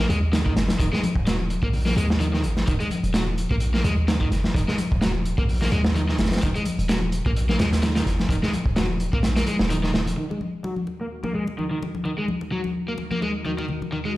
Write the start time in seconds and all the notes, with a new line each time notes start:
0.09 D#2 G#3, closed hi-hat, low conga
0.33 D#3, snare, closed hi-hat, high conga
0.46 D#3, kick
0.56 F#1, snare, closed hi-hat
0.69 snare, closed hi-hat, high conga
0.80 D#1 D#3, kick, closed hi-hat
0.93 G#3, snare
1.04 closed hi-hat, high conga
1.15 D#1, kick
1.27 F#3, snare, closed hi-hat
1.39 high conga
1.50 closed hi-hat
1.63 A#1 A#3, kick
1.73 open hi-hat, low conga
1.86 A#3, snare, high conga
1.97 D#2 G#3, closed hi-hat
2.10 snare
2.20 D#3, closed hi-hat, high conga
2.33 D#3, snare
2.43 G#1, closed hi-hat, low conga
2.57 snare, high conga
2.67 D#1 D#3, kick, closed hi-hat
2.80 G#3, closed hi-hat
2.91 closed hi-hat, high conga
3.04 D#1, closed hi-hat
3.14 F#3, snare, closed hi-hat
3.27 high conga
3.38 closed hi-hat
3.51 A#1 A#3, kick
3.60 closed hi-hat
3.74 A#3, snare, high conga
3.84 D#2 G#3, closed hi-hat, low conga
4.07 D#3, snare, closed hi-hat, high conga
4.21 D#3, kick
4.31 F#1, snare, closed hi-hat
4.44 snare, high conga
4.55 D#1 D#3, kick, closed hi-hat
4.68 G#3, snare
4.78 closed hi-hat, high conga
4.92 D#1, kick
5.01 F#3, snare, closed hi-hat
5.15 high conga
5.25 closed hi-hat
5.38 A#1 A#3, kick
5.49 open hi-hat
5.62 A#3, snare, high conga
5.72 D#2 G#3, closed hi-hat
5.85 snare
5.95 D#3, closed hi-hat, high conga
6.09 D#3, snare
6.18 F#1, snare, closed hi-hat, low conga
6.25 snare, closed hi-hat
6.31 snare, closed hi-hat, high conga
6.36 snare, closed hi-hat
6.42 D#1 D#3, kick, closed hi-hat
6.55 G#3, closed hi-hat
6.65 closed hi-hat, high conga
6.79 D#1, closed hi-hat
6.89 F#3, snare, closed hi-hat
7.02 high conga
7.12 closed hi-hat
7.26 A#1 A#3, kick
7.36 closed hi-hat
7.49 A#3, snare, high conga
7.59 D#2 G#3, snare, closed hi-hat, low conga
7.73 snare, closed hi-hat
7.82 D#3, snare, closed hi-hat, high conga
7.96 D#3, snare, closed hi-hat
8.06 F#1, snare, closed hi-hat
8.19 snare, high conga
8.29 D#1 D#3, kick, closed hi-hat
8.43 G#3, snare
8.53 closed hi-hat, high conga
8.66 D#1, kick
8.76 F#3, snare, closed hi-hat
8.90 high conga
9.00 closed hi-hat
9.13 A#1 A#3, kick
9.23 snare, closed hi-hat, low conga
9.36 A#3, snare, closed hi-hat, high conga
9.47 G#3, closed hi-hat
9.59 D#1, snare
9.70 D#3, closed hi-hat, high conga
9.83 D#3, snare
9.94 snare, low conga
10.07 closed hi-hat, high conga
10.17 D#3 D#4 F#4 A#4 A#5
10.30 G#3, muted conga
10.41 high conga
10.64 F#3, muted conga
10.76 high conga
10.87 muted conga
11.01 A#3
11.24 A#3, muted conga, high conga
11.35 G#3
11.47 muted conga
11.58 D#3, high conga
11.71 D#3
11.83 muted conga
11.95 high conga
12.05 D#3, muted conga
12.18 G#3
12.28 high conga
12.41 muted conga
12.52 F#3
12.64 muted conga, high conga
12.88 A#3
12.98 muted conga
13.11 A#3, high conga
13.22 G#3, muted conga
13.45 D#3, high conga
13.59 D#3, muted conga
13.68 low conga
13.82 muted conga, high conga
13.92 D#3
14.05 G#3